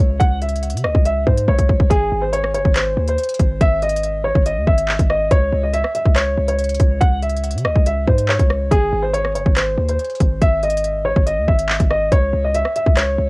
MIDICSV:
0, 0, Header, 1, 4, 480
1, 0, Start_track
1, 0, Key_signature, 4, "minor"
1, 0, Tempo, 425532
1, 230, Time_signature, 4, 2, 24, 8
1, 14997, End_track
2, 0, Start_track
2, 0, Title_t, "Grand piano"
2, 0, Program_c, 0, 0
2, 0, Note_on_c, 0, 73, 80
2, 194, Note_off_c, 0, 73, 0
2, 221, Note_on_c, 0, 78, 104
2, 422, Note_off_c, 0, 78, 0
2, 472, Note_on_c, 0, 76, 80
2, 922, Note_off_c, 0, 76, 0
2, 947, Note_on_c, 0, 75, 75
2, 1145, Note_off_c, 0, 75, 0
2, 1191, Note_on_c, 0, 76, 83
2, 1387, Note_off_c, 0, 76, 0
2, 1429, Note_on_c, 0, 72, 75
2, 1626, Note_off_c, 0, 72, 0
2, 1673, Note_on_c, 0, 73, 86
2, 2123, Note_off_c, 0, 73, 0
2, 2144, Note_on_c, 0, 68, 104
2, 2485, Note_off_c, 0, 68, 0
2, 2499, Note_on_c, 0, 72, 82
2, 2602, Note_off_c, 0, 72, 0
2, 2625, Note_on_c, 0, 73, 100
2, 2824, Note_off_c, 0, 73, 0
2, 2869, Note_on_c, 0, 73, 83
2, 3066, Note_off_c, 0, 73, 0
2, 3110, Note_on_c, 0, 72, 80
2, 3448, Note_off_c, 0, 72, 0
2, 3481, Note_on_c, 0, 72, 80
2, 4040, Note_off_c, 0, 72, 0
2, 4072, Note_on_c, 0, 76, 111
2, 4268, Note_off_c, 0, 76, 0
2, 4314, Note_on_c, 0, 75, 88
2, 4763, Note_off_c, 0, 75, 0
2, 4784, Note_on_c, 0, 73, 90
2, 4983, Note_off_c, 0, 73, 0
2, 5030, Note_on_c, 0, 75, 88
2, 5227, Note_off_c, 0, 75, 0
2, 5267, Note_on_c, 0, 76, 87
2, 5720, Note_off_c, 0, 76, 0
2, 5751, Note_on_c, 0, 75, 88
2, 5948, Note_off_c, 0, 75, 0
2, 5993, Note_on_c, 0, 73, 108
2, 6330, Note_off_c, 0, 73, 0
2, 6356, Note_on_c, 0, 75, 81
2, 6452, Note_off_c, 0, 75, 0
2, 6469, Note_on_c, 0, 76, 96
2, 6666, Note_off_c, 0, 76, 0
2, 6710, Note_on_c, 0, 76, 83
2, 6907, Note_off_c, 0, 76, 0
2, 6944, Note_on_c, 0, 73, 98
2, 7285, Note_off_c, 0, 73, 0
2, 7313, Note_on_c, 0, 73, 80
2, 7876, Note_off_c, 0, 73, 0
2, 7904, Note_on_c, 0, 78, 106
2, 8103, Note_off_c, 0, 78, 0
2, 8150, Note_on_c, 0, 76, 82
2, 8601, Note_off_c, 0, 76, 0
2, 8629, Note_on_c, 0, 75, 76
2, 8826, Note_off_c, 0, 75, 0
2, 8873, Note_on_c, 0, 76, 84
2, 9069, Note_off_c, 0, 76, 0
2, 9111, Note_on_c, 0, 72, 76
2, 9307, Note_off_c, 0, 72, 0
2, 9353, Note_on_c, 0, 73, 85
2, 9803, Note_off_c, 0, 73, 0
2, 9825, Note_on_c, 0, 68, 107
2, 10166, Note_off_c, 0, 68, 0
2, 10179, Note_on_c, 0, 72, 83
2, 10282, Note_off_c, 0, 72, 0
2, 10304, Note_on_c, 0, 73, 98
2, 10503, Note_off_c, 0, 73, 0
2, 10549, Note_on_c, 0, 73, 82
2, 10746, Note_off_c, 0, 73, 0
2, 10789, Note_on_c, 0, 72, 80
2, 11128, Note_off_c, 0, 72, 0
2, 11157, Note_on_c, 0, 72, 78
2, 11718, Note_off_c, 0, 72, 0
2, 11753, Note_on_c, 0, 76, 105
2, 11948, Note_off_c, 0, 76, 0
2, 11994, Note_on_c, 0, 75, 86
2, 12444, Note_off_c, 0, 75, 0
2, 12464, Note_on_c, 0, 73, 90
2, 12663, Note_off_c, 0, 73, 0
2, 12707, Note_on_c, 0, 75, 90
2, 12905, Note_off_c, 0, 75, 0
2, 12947, Note_on_c, 0, 76, 89
2, 13399, Note_off_c, 0, 76, 0
2, 13431, Note_on_c, 0, 75, 90
2, 13627, Note_off_c, 0, 75, 0
2, 13672, Note_on_c, 0, 73, 106
2, 14009, Note_off_c, 0, 73, 0
2, 14037, Note_on_c, 0, 75, 86
2, 14133, Note_off_c, 0, 75, 0
2, 14151, Note_on_c, 0, 76, 95
2, 14347, Note_off_c, 0, 76, 0
2, 14393, Note_on_c, 0, 76, 81
2, 14589, Note_off_c, 0, 76, 0
2, 14626, Note_on_c, 0, 73, 97
2, 14967, Note_off_c, 0, 73, 0
2, 14997, End_track
3, 0, Start_track
3, 0, Title_t, "808-style bass"
3, 0, Program_c, 1, 38
3, 0, Note_on_c, 1, 37, 102
3, 220, Note_off_c, 1, 37, 0
3, 230, Note_on_c, 1, 37, 111
3, 830, Note_on_c, 1, 49, 101
3, 847, Note_off_c, 1, 37, 0
3, 949, Note_on_c, 1, 37, 102
3, 966, Note_off_c, 1, 49, 0
3, 1063, Note_off_c, 1, 37, 0
3, 1069, Note_on_c, 1, 37, 108
3, 1415, Note_off_c, 1, 37, 0
3, 1430, Note_on_c, 1, 44, 105
3, 1660, Note_off_c, 1, 44, 0
3, 1670, Note_on_c, 1, 37, 104
3, 2131, Note_off_c, 1, 37, 0
3, 2150, Note_on_c, 1, 32, 113
3, 2381, Note_off_c, 1, 32, 0
3, 2390, Note_on_c, 1, 32, 108
3, 2869, Note_on_c, 1, 30, 101
3, 2886, Note_off_c, 1, 32, 0
3, 2983, Note_off_c, 1, 30, 0
3, 2990, Note_on_c, 1, 32, 105
3, 3335, Note_off_c, 1, 32, 0
3, 3349, Note_on_c, 1, 39, 98
3, 3580, Note_off_c, 1, 39, 0
3, 3829, Note_on_c, 1, 32, 105
3, 4060, Note_off_c, 1, 32, 0
3, 4069, Note_on_c, 1, 32, 117
3, 4876, Note_off_c, 1, 32, 0
3, 4909, Note_on_c, 1, 32, 110
3, 5149, Note_on_c, 1, 39, 103
3, 5166, Note_off_c, 1, 32, 0
3, 5264, Note_off_c, 1, 39, 0
3, 5270, Note_on_c, 1, 32, 103
3, 5616, Note_off_c, 1, 32, 0
3, 5630, Note_on_c, 1, 32, 105
3, 5976, Note_off_c, 1, 32, 0
3, 5990, Note_on_c, 1, 37, 113
3, 6221, Note_off_c, 1, 37, 0
3, 6232, Note_on_c, 1, 37, 110
3, 6577, Note_off_c, 1, 37, 0
3, 6830, Note_on_c, 1, 37, 105
3, 7176, Note_off_c, 1, 37, 0
3, 7191, Note_on_c, 1, 37, 103
3, 7651, Note_off_c, 1, 37, 0
3, 7669, Note_on_c, 1, 37, 106
3, 7900, Note_off_c, 1, 37, 0
3, 7910, Note_on_c, 1, 37, 107
3, 8510, Note_on_c, 1, 49, 105
3, 8527, Note_off_c, 1, 37, 0
3, 8630, Note_on_c, 1, 37, 106
3, 8647, Note_off_c, 1, 49, 0
3, 8744, Note_off_c, 1, 37, 0
3, 8749, Note_on_c, 1, 37, 106
3, 9095, Note_off_c, 1, 37, 0
3, 9110, Note_on_c, 1, 44, 101
3, 9455, Note_off_c, 1, 44, 0
3, 9469, Note_on_c, 1, 37, 105
3, 9815, Note_off_c, 1, 37, 0
3, 9829, Note_on_c, 1, 32, 117
3, 10060, Note_off_c, 1, 32, 0
3, 10068, Note_on_c, 1, 32, 107
3, 10548, Note_on_c, 1, 30, 102
3, 10565, Note_off_c, 1, 32, 0
3, 10663, Note_off_c, 1, 30, 0
3, 10671, Note_on_c, 1, 32, 105
3, 11016, Note_off_c, 1, 32, 0
3, 11028, Note_on_c, 1, 39, 98
3, 11259, Note_off_c, 1, 39, 0
3, 11510, Note_on_c, 1, 32, 104
3, 11740, Note_off_c, 1, 32, 0
3, 11751, Note_on_c, 1, 32, 112
3, 12557, Note_off_c, 1, 32, 0
3, 12591, Note_on_c, 1, 32, 111
3, 12829, Note_on_c, 1, 39, 102
3, 12846, Note_off_c, 1, 32, 0
3, 12944, Note_off_c, 1, 39, 0
3, 12951, Note_on_c, 1, 32, 102
3, 13296, Note_off_c, 1, 32, 0
3, 13311, Note_on_c, 1, 32, 103
3, 13656, Note_off_c, 1, 32, 0
3, 13670, Note_on_c, 1, 37, 115
3, 13900, Note_off_c, 1, 37, 0
3, 13909, Note_on_c, 1, 37, 104
3, 14255, Note_off_c, 1, 37, 0
3, 14510, Note_on_c, 1, 37, 103
3, 14855, Note_off_c, 1, 37, 0
3, 14870, Note_on_c, 1, 37, 102
3, 14997, Note_off_c, 1, 37, 0
3, 14997, End_track
4, 0, Start_track
4, 0, Title_t, "Drums"
4, 230, Note_on_c, 9, 36, 124
4, 230, Note_on_c, 9, 42, 90
4, 343, Note_off_c, 9, 36, 0
4, 343, Note_off_c, 9, 42, 0
4, 470, Note_on_c, 9, 42, 52
4, 550, Note_off_c, 9, 42, 0
4, 550, Note_on_c, 9, 42, 61
4, 628, Note_off_c, 9, 42, 0
4, 628, Note_on_c, 9, 42, 63
4, 708, Note_off_c, 9, 42, 0
4, 708, Note_on_c, 9, 42, 74
4, 789, Note_off_c, 9, 42, 0
4, 789, Note_on_c, 9, 42, 85
4, 869, Note_off_c, 9, 42, 0
4, 869, Note_on_c, 9, 42, 88
4, 949, Note_on_c, 9, 37, 97
4, 982, Note_off_c, 9, 42, 0
4, 1062, Note_off_c, 9, 37, 0
4, 1069, Note_on_c, 9, 36, 95
4, 1182, Note_off_c, 9, 36, 0
4, 1189, Note_on_c, 9, 42, 77
4, 1302, Note_off_c, 9, 42, 0
4, 1430, Note_on_c, 9, 36, 91
4, 1543, Note_off_c, 9, 36, 0
4, 1551, Note_on_c, 9, 42, 74
4, 1664, Note_off_c, 9, 42, 0
4, 1670, Note_on_c, 9, 36, 61
4, 1782, Note_off_c, 9, 36, 0
4, 1789, Note_on_c, 9, 36, 69
4, 1789, Note_on_c, 9, 42, 83
4, 1902, Note_off_c, 9, 36, 0
4, 1902, Note_off_c, 9, 42, 0
4, 1909, Note_on_c, 9, 36, 94
4, 2022, Note_off_c, 9, 36, 0
4, 2030, Note_on_c, 9, 36, 101
4, 2142, Note_off_c, 9, 36, 0
4, 2150, Note_on_c, 9, 36, 120
4, 2150, Note_on_c, 9, 42, 93
4, 2263, Note_off_c, 9, 36, 0
4, 2263, Note_off_c, 9, 42, 0
4, 2629, Note_on_c, 9, 42, 82
4, 2742, Note_off_c, 9, 42, 0
4, 2750, Note_on_c, 9, 37, 77
4, 2862, Note_off_c, 9, 37, 0
4, 2870, Note_on_c, 9, 42, 87
4, 2983, Note_off_c, 9, 42, 0
4, 2990, Note_on_c, 9, 36, 91
4, 3102, Note_off_c, 9, 36, 0
4, 3109, Note_on_c, 9, 42, 82
4, 3110, Note_on_c, 9, 39, 117
4, 3222, Note_off_c, 9, 42, 0
4, 3223, Note_off_c, 9, 39, 0
4, 3471, Note_on_c, 9, 42, 75
4, 3583, Note_off_c, 9, 42, 0
4, 3590, Note_on_c, 9, 42, 68
4, 3649, Note_off_c, 9, 42, 0
4, 3649, Note_on_c, 9, 42, 66
4, 3710, Note_off_c, 9, 42, 0
4, 3710, Note_on_c, 9, 42, 70
4, 3769, Note_off_c, 9, 42, 0
4, 3769, Note_on_c, 9, 42, 68
4, 3828, Note_off_c, 9, 42, 0
4, 3828, Note_on_c, 9, 42, 80
4, 3829, Note_on_c, 9, 36, 97
4, 3941, Note_off_c, 9, 42, 0
4, 3942, Note_off_c, 9, 36, 0
4, 4070, Note_on_c, 9, 36, 126
4, 4070, Note_on_c, 9, 42, 94
4, 4182, Note_off_c, 9, 36, 0
4, 4183, Note_off_c, 9, 42, 0
4, 4309, Note_on_c, 9, 42, 53
4, 4390, Note_off_c, 9, 42, 0
4, 4390, Note_on_c, 9, 42, 70
4, 4469, Note_off_c, 9, 42, 0
4, 4469, Note_on_c, 9, 42, 86
4, 4549, Note_off_c, 9, 42, 0
4, 4549, Note_on_c, 9, 42, 81
4, 4662, Note_off_c, 9, 42, 0
4, 4910, Note_on_c, 9, 36, 93
4, 5022, Note_off_c, 9, 36, 0
4, 5029, Note_on_c, 9, 42, 80
4, 5141, Note_off_c, 9, 42, 0
4, 5270, Note_on_c, 9, 36, 93
4, 5383, Note_off_c, 9, 36, 0
4, 5390, Note_on_c, 9, 42, 78
4, 5503, Note_off_c, 9, 42, 0
4, 5509, Note_on_c, 9, 39, 113
4, 5622, Note_off_c, 9, 39, 0
4, 5630, Note_on_c, 9, 42, 87
4, 5631, Note_on_c, 9, 36, 100
4, 5743, Note_off_c, 9, 36, 0
4, 5743, Note_off_c, 9, 42, 0
4, 5751, Note_on_c, 9, 37, 84
4, 5863, Note_off_c, 9, 37, 0
4, 5990, Note_on_c, 9, 36, 124
4, 5990, Note_on_c, 9, 42, 92
4, 6103, Note_off_c, 9, 36, 0
4, 6103, Note_off_c, 9, 42, 0
4, 6470, Note_on_c, 9, 42, 86
4, 6583, Note_off_c, 9, 42, 0
4, 6590, Note_on_c, 9, 37, 73
4, 6702, Note_off_c, 9, 37, 0
4, 6710, Note_on_c, 9, 42, 86
4, 6823, Note_off_c, 9, 42, 0
4, 6830, Note_on_c, 9, 36, 97
4, 6943, Note_off_c, 9, 36, 0
4, 6949, Note_on_c, 9, 42, 78
4, 6951, Note_on_c, 9, 39, 120
4, 7062, Note_off_c, 9, 42, 0
4, 7063, Note_off_c, 9, 39, 0
4, 7311, Note_on_c, 9, 42, 73
4, 7424, Note_off_c, 9, 42, 0
4, 7430, Note_on_c, 9, 42, 69
4, 7490, Note_off_c, 9, 42, 0
4, 7490, Note_on_c, 9, 42, 67
4, 7549, Note_off_c, 9, 42, 0
4, 7549, Note_on_c, 9, 42, 70
4, 7609, Note_off_c, 9, 42, 0
4, 7609, Note_on_c, 9, 42, 69
4, 7667, Note_off_c, 9, 42, 0
4, 7667, Note_on_c, 9, 42, 80
4, 7669, Note_on_c, 9, 36, 102
4, 7780, Note_off_c, 9, 42, 0
4, 7782, Note_off_c, 9, 36, 0
4, 7909, Note_on_c, 9, 42, 92
4, 7910, Note_on_c, 9, 36, 127
4, 8022, Note_off_c, 9, 36, 0
4, 8022, Note_off_c, 9, 42, 0
4, 8149, Note_on_c, 9, 42, 52
4, 8229, Note_off_c, 9, 42, 0
4, 8229, Note_on_c, 9, 42, 61
4, 8309, Note_off_c, 9, 42, 0
4, 8309, Note_on_c, 9, 42, 69
4, 8389, Note_off_c, 9, 42, 0
4, 8389, Note_on_c, 9, 42, 76
4, 8469, Note_off_c, 9, 42, 0
4, 8469, Note_on_c, 9, 42, 82
4, 8549, Note_off_c, 9, 42, 0
4, 8549, Note_on_c, 9, 42, 88
4, 8628, Note_on_c, 9, 37, 104
4, 8662, Note_off_c, 9, 42, 0
4, 8741, Note_off_c, 9, 37, 0
4, 8749, Note_on_c, 9, 36, 94
4, 8862, Note_off_c, 9, 36, 0
4, 8869, Note_on_c, 9, 42, 82
4, 8982, Note_off_c, 9, 42, 0
4, 9110, Note_on_c, 9, 36, 89
4, 9222, Note_off_c, 9, 36, 0
4, 9230, Note_on_c, 9, 42, 76
4, 9343, Note_off_c, 9, 42, 0
4, 9349, Note_on_c, 9, 39, 116
4, 9461, Note_off_c, 9, 39, 0
4, 9469, Note_on_c, 9, 42, 85
4, 9470, Note_on_c, 9, 36, 100
4, 9582, Note_off_c, 9, 36, 0
4, 9582, Note_off_c, 9, 42, 0
4, 9589, Note_on_c, 9, 37, 85
4, 9702, Note_off_c, 9, 37, 0
4, 9829, Note_on_c, 9, 36, 126
4, 9830, Note_on_c, 9, 42, 91
4, 9942, Note_off_c, 9, 36, 0
4, 9942, Note_off_c, 9, 42, 0
4, 10310, Note_on_c, 9, 42, 84
4, 10423, Note_off_c, 9, 42, 0
4, 10430, Note_on_c, 9, 37, 71
4, 10543, Note_off_c, 9, 37, 0
4, 10551, Note_on_c, 9, 42, 91
4, 10664, Note_off_c, 9, 42, 0
4, 10670, Note_on_c, 9, 36, 94
4, 10783, Note_off_c, 9, 36, 0
4, 10789, Note_on_c, 9, 42, 82
4, 10790, Note_on_c, 9, 39, 122
4, 10902, Note_off_c, 9, 42, 0
4, 10903, Note_off_c, 9, 39, 0
4, 11151, Note_on_c, 9, 42, 76
4, 11264, Note_off_c, 9, 42, 0
4, 11271, Note_on_c, 9, 42, 68
4, 11331, Note_off_c, 9, 42, 0
4, 11331, Note_on_c, 9, 42, 68
4, 11390, Note_off_c, 9, 42, 0
4, 11390, Note_on_c, 9, 42, 68
4, 11450, Note_off_c, 9, 42, 0
4, 11450, Note_on_c, 9, 42, 67
4, 11509, Note_off_c, 9, 42, 0
4, 11509, Note_on_c, 9, 42, 81
4, 11510, Note_on_c, 9, 36, 101
4, 11622, Note_off_c, 9, 42, 0
4, 11623, Note_off_c, 9, 36, 0
4, 11750, Note_on_c, 9, 36, 127
4, 11750, Note_on_c, 9, 42, 93
4, 11863, Note_off_c, 9, 36, 0
4, 11863, Note_off_c, 9, 42, 0
4, 11990, Note_on_c, 9, 42, 54
4, 12071, Note_off_c, 9, 42, 0
4, 12071, Note_on_c, 9, 42, 72
4, 12151, Note_off_c, 9, 42, 0
4, 12151, Note_on_c, 9, 42, 87
4, 12231, Note_off_c, 9, 42, 0
4, 12231, Note_on_c, 9, 42, 82
4, 12343, Note_off_c, 9, 42, 0
4, 12591, Note_on_c, 9, 36, 98
4, 12703, Note_off_c, 9, 36, 0
4, 12710, Note_on_c, 9, 42, 82
4, 12823, Note_off_c, 9, 42, 0
4, 12951, Note_on_c, 9, 36, 88
4, 13063, Note_off_c, 9, 36, 0
4, 13071, Note_on_c, 9, 42, 78
4, 13184, Note_off_c, 9, 42, 0
4, 13189, Note_on_c, 9, 39, 115
4, 13302, Note_off_c, 9, 39, 0
4, 13310, Note_on_c, 9, 42, 88
4, 13311, Note_on_c, 9, 36, 98
4, 13423, Note_off_c, 9, 36, 0
4, 13423, Note_off_c, 9, 42, 0
4, 13430, Note_on_c, 9, 37, 82
4, 13542, Note_off_c, 9, 37, 0
4, 13670, Note_on_c, 9, 36, 124
4, 13670, Note_on_c, 9, 42, 91
4, 13783, Note_off_c, 9, 36, 0
4, 13783, Note_off_c, 9, 42, 0
4, 14150, Note_on_c, 9, 42, 83
4, 14263, Note_off_c, 9, 42, 0
4, 14269, Note_on_c, 9, 37, 74
4, 14382, Note_off_c, 9, 37, 0
4, 14390, Note_on_c, 9, 42, 89
4, 14503, Note_off_c, 9, 42, 0
4, 14510, Note_on_c, 9, 36, 92
4, 14623, Note_off_c, 9, 36, 0
4, 14629, Note_on_c, 9, 42, 83
4, 14630, Note_on_c, 9, 39, 125
4, 14742, Note_off_c, 9, 42, 0
4, 14743, Note_off_c, 9, 39, 0
4, 14997, End_track
0, 0, End_of_file